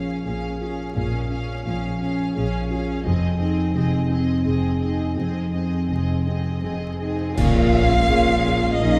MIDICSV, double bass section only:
0, 0, Header, 1, 2, 480
1, 0, Start_track
1, 0, Key_signature, -5, "minor"
1, 0, Tempo, 700935
1, 655, Time_signature, 3, 2, 24, 8
1, 3051, Tempo, 730816
1, 4971, Tempo, 706714
1, 6068, End_track
2, 0, Start_track
2, 0, Title_t, "Double bass section"
2, 0, Program_c, 0, 48
2, 0, Note_on_c, 0, 34, 42
2, 96, Note_off_c, 0, 34, 0
2, 175, Note_on_c, 0, 34, 47
2, 580, Note_off_c, 0, 34, 0
2, 657, Note_on_c, 0, 34, 55
2, 1062, Note_off_c, 0, 34, 0
2, 1142, Note_on_c, 0, 34, 62
2, 1543, Note_off_c, 0, 34, 0
2, 1616, Note_on_c, 0, 34, 57
2, 2017, Note_off_c, 0, 34, 0
2, 2092, Note_on_c, 0, 29, 68
2, 2493, Note_off_c, 0, 29, 0
2, 2565, Note_on_c, 0, 29, 52
2, 2974, Note_off_c, 0, 29, 0
2, 3048, Note_on_c, 0, 29, 47
2, 3450, Note_off_c, 0, 29, 0
2, 3523, Note_on_c, 0, 29, 47
2, 3930, Note_off_c, 0, 29, 0
2, 4001, Note_on_c, 0, 29, 43
2, 4412, Note_off_c, 0, 29, 0
2, 4485, Note_on_c, 0, 29, 40
2, 4895, Note_off_c, 0, 29, 0
2, 4969, Note_on_c, 0, 34, 70
2, 5399, Note_off_c, 0, 34, 0
2, 5458, Note_on_c, 0, 34, 59
2, 5878, Note_off_c, 0, 34, 0
2, 5934, Note_on_c, 0, 34, 62
2, 6068, Note_off_c, 0, 34, 0
2, 6068, End_track
0, 0, End_of_file